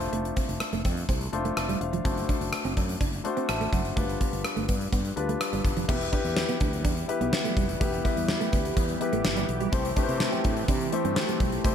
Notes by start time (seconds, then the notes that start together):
Already playing: A3 D4 F4 C5
0.01 closed hi-hat
0.13 F1 A3, closed hi-hat
0.25 closed hi-hat
0.36 C4, kick, closed hi-hat
0.49 F1, muted clean electric guitar stroke, closed hi-hat
0.60 muted clean electric guitar stroke, cross-stick, closed hi-hat
0.73 F1 A3, closed hi-hat
0.85 F2 C4, kick, closed hi-hat
0.97 closed hi-hat
1.09 C2 C4, kick, closed hi-hat
1.21 closed hi-hat
1.32 F1 A3 D4 F4 C5, muted clean electric guitar stroke, closed hi-hat
1.45 A3, closed hi-hat
1.57 F1 E5 A5, cross-stick, closed hi-hat
1.69 G3, closed hi-hat
1.81 E1 C5 F5, muted clean electric guitar stroke, closed hi-hat
1.93 F3, closed hi-hat
2.04 F#1 A3 C4 D4 F#4 C5, kick, closed hi-hat
2.17 closed hi-hat
2.29 D4, kick, closed hi-hat
2.41 F#1, muted clean electric guitar stroke, closed hi-hat
2.53 muted clean electric guitar stroke, cross-stick, closed hi-hat
2.65 F#1 C4, closed hi-hat
2.77 F#2 D4, kick, closed hi-hat
2.89 closed hi-hat
3.01 F#1 D4, kick, closed hi-hat
3.13 closed hi-hat
3.24 A3 D4 F#4 C5, muted clean electric guitar stroke, closed hi-hat
3.37 C4, closed hi-hat
3.49 A1 E5 A5, muted clean electric guitar stroke, cross-stick, closed hi-hat
3.61 A3, closed hi-hat
3.73 F#1 F#3 C5 F#5, kick, closed hi-hat
3.85 closed hi-hat
3.96 G1 G3 A3 D4 F4 B4, kick, closed hi-hat
4.09 closed hi-hat
4.21 B3, kick, closed hi-hat
4.33 G1, muted clean electric guitar stroke, closed hi-hat
4.44 muted clean electric guitar stroke, cross-stick, closed hi-hat
4.56 G1 A3, closed hi-hat
4.68 G2 B3, kick, closed hi-hat
4.81 closed hi-hat
4.92 G2 B3, kick, closed hi-hat
5.05 closed hi-hat
5.16 D2 G3 D4 F4 B4, muted clean electric guitar stroke, closed hi-hat
5.29 A3, closed hi-hat
5.41 cross-stick, closed hi-hat
5.53 G1 G3, closed hi-hat
5.65 G1, muted clean electric guitar stroke, kick, closed hi-hat
5.77 F1 F3, closed hi-hat
5.88 E1 E3 G3 B3 E4 G4 B4, kick, crash
6.01 closed hi-hat
6.12 D4 E4 G4 B4, kick, closed hi-hat
6.24 E2, muted clean electric guitar stroke, closed hi-hat
6.36 muted clean electric guitar stroke, snare, tambourine
6.49 B3, closed hi-hat
6.60 D2 D4, kick, closed hi-hat
6.73 closed hi-hat
6.85 E2 D4, kick, closed hi-hat
6.97 closed hi-hat
7.08 E4 G4 B4, muted clean electric guitar stroke, closed hi-hat
7.21 B1 B3, closed hi-hat
7.33 muted clean electric guitar stroke, snare, tambourine
7.45 A3, closed hi-hat
7.57 F1 G3, kick, closed hi-hat
7.69 closed hi-hat
7.80 E1 A3 E4 G4 B4, kick, closed hi-hat
7.93 closed hi-hat
8.04 B3 E4 G4 B4, kick, closed hi-hat
8.16 E2, muted clean electric guitar stroke, closed hi-hat
8.28 muted clean electric guitar stroke, snare, tambourine
8.41 A3, closed hi-hat
8.52 D2 B3, kick, closed hi-hat
8.65 closed hi-hat
8.77 E2 B3, kick, closed hi-hat
8.89 closed hi-hat
9.00 E4 G4 B4, muted clean electric guitar stroke, closed hi-hat
9.13 A1 A3, closed hi-hat
9.25 G1, snare, tambourine
9.37 G3, closed hi-hat
9.49 B1, muted clean electric guitar stroke, closed hi-hat
9.60 G3, closed hi-hat
9.72 C2 A3 C4 E4 G4 C5, kick, closed hi-hat
9.85 closed hi-hat
9.96 A3 C4 D4 E4 G4 B4, kick, closed hi-hat
10.03 C5
10.08 C3, muted clean electric guitar stroke, closed hi-hat
10.20 muted clean electric guitar stroke, snare, tambourine
10.32 C4, closed hi-hat
10.44 A2 D4, kick, closed hi-hat
10.57 closed hi-hat
10.68 C3 D4, kick, closed hi-hat
10.80 closed hi-hat
10.92 A3 C4 E4 G4 C5, muted clean electric guitar stroke, closed hi-hat
11.05 G2 C4, closed hi-hat
11.16 muted clean electric guitar stroke, snare, tambourine
11.28 A3, closed hi-hat
11.40 B1 G3, kick, closed hi-hat
11.52 closed hi-hat
11.64 C2 A3 C4 E4 G4 C5, kick, closed hi-hat